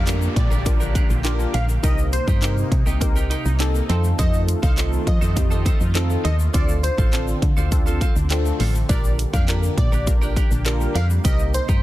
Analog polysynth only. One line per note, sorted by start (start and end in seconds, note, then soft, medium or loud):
0.07 0.40 D4 medium
0.07 0.40 F4 medium
0.07 0.40 G4 medium
0.07 0.40 A#4 medium
0.65 0.99 D4 medium
0.65 0.99 F4 medium
0.65 0.99 G4 medium
0.65 0.99 A#4 loud
1.24 1.58 D4 loud
1.24 1.58 F4 loud
1.24 1.58 G4 loud
1.24 1.58 A#4 loud
1.83 2.16 C4 medium
1.83 2.16 D#4 medium
1.83 2.16 G4 medium
1.83 2.17 A#4 medium
2.42 2.75 C4 medium
2.42 2.75 D#4 medium
2.42 2.75 G4 medium
2.42 2.75 A#4 medium
3.01 3.34 C4 loud
3.01 3.34 D#4 medium
3.01 3.34 G4 medium
3.01 3.34 A#4 loud
3.59 3.88 C4 loud
3.59 3.88 D#4 medium
3.59 3.89 G4 medium
3.59 3.88 A4 loud
3.89 4.60 C4 loud
3.89 4.60 D#4 medium
3.89 4.60 F4 medium
3.89 4.60 A4 loud
4.77 5.11 C4 medium
4.77 5.11 D#4 medium
4.77 5.11 F4 medium
4.77 5.11 A4 medium
5.36 5.69 C4 medium
5.36 5.69 D#4 medium
5.36 5.69 F4 medium
5.36 5.70 G4 loud
5.95 6.28 C4 loud
5.95 6.28 D#4 loud
5.95 6.28 F4 loud
5.95 6.28 A4 loud
6.54 6.87 C4 medium
6.54 6.87 D4 medium
6.54 6.87 F4 medium
6.54 6.87 A4 loud
7.13 7.46 C4 medium
7.13 7.46 D4 medium
7.13 7.46 F4 medium
7.13 7.46 A4 medium
7.71 8.05 C4 loud
7.71 8.05 D4 medium
7.71 8.05 F4 medium
7.71 8.05 A4 loud
8.30 8.64 C4 loud
8.30 8.64 D4 medium
8.30 8.64 F4 medium
8.30 8.64 A4 loud
8.89 9.22 D4 medium
8.89 9.22 F4 medium
8.89 9.23 G4 medium
8.89 9.23 A#4 loud
9.48 9.81 D4 medium
9.48 9.81 F4 medium
9.48 9.81 G4 medium
9.48 9.81 A#4 medium
10.07 10.40 D4 medium
10.07 10.40 F4 medium
10.07 10.40 G4 medium
10.07 10.40 A#4 loud
10.65 10.99 D4 loud
10.65 10.99 F4 loud
10.65 10.99 G4 loud
10.65 10.99 A#4 loud
11.24 11.58 C4 medium
11.24 11.58 D#4 medium
11.24 11.58 G4 medium
11.24 11.58 A#4 loud